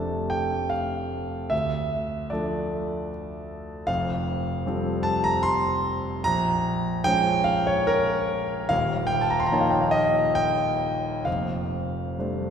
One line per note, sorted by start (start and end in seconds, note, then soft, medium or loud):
0.00 1.55 F1 soft
0.00 1.54 F2 medium
0.00 1.48 C3 soft
0.00 1.48 A3 soft
0.00 1.48 D4 soft
0.00 1.48 A4 soft
0.00 0.31 A5 medium
0.30 0.71 G5 medium
0.70 1.51 F5 medium
1.50 2.29 D2 soft
1.50 2.30 E5 medium
2.30 3.84 F3 soft
2.30 3.84 A3 soft
2.30 3.84 D4 soft
2.30 3.85 A4 soft
2.30 3.10 D5 medium
3.87 4.63 F1 medium
3.87 4.63 F2 medium
3.87 5.04 F5 loud
4.66 6.21 F3 soft
4.66 6.21 G3 soft
4.66 6.21 C4 soft
4.66 6.22 A4 soft
5.03 5.24 A5 loud
5.24 5.44 A#5 loud
5.43 6.24 C6 loud
6.24 7.03 A#1 medium
6.24 7.04 A#5 loud
7.04 8.67 F3 soft
7.04 8.67 G#3 soft
7.04 8.67 C#4 soft
7.04 8.68 C5 medium
7.04 7.46 G5 loud
7.44 7.66 F5 loud
7.67 7.88 C#5 loud
7.87 8.70 A#4 loud
8.69 9.49 D#1 medium
8.69 9.50 D#2 medium
8.69 9.06 F5 loud
9.07 9.21 G5 loud
9.21 9.32 A5 medium
9.30 9.40 A#5 medium
9.40 9.48 C6 medium
9.46 9.55 A#5 medium
9.51 11.22 F3 soft
9.51 11.22 A#3 medium
9.51 11.22 D#4 soft
9.51 11.23 C#5 medium
9.51 9.62 A5 medium
9.61 9.71 F5 medium
9.70 9.82 G5 medium
9.81 9.93 F5 medium
9.91 10.36 D#5 medium
10.35 11.25 G5 loud
11.25 12.16 F1 soft
11.25 12.16 F2 medium
11.25 12.50 F5 medium
12.18 12.50 G3 soft
12.18 12.50 A3 soft
12.18 12.50 D4 soft
12.18 12.50 C5 soft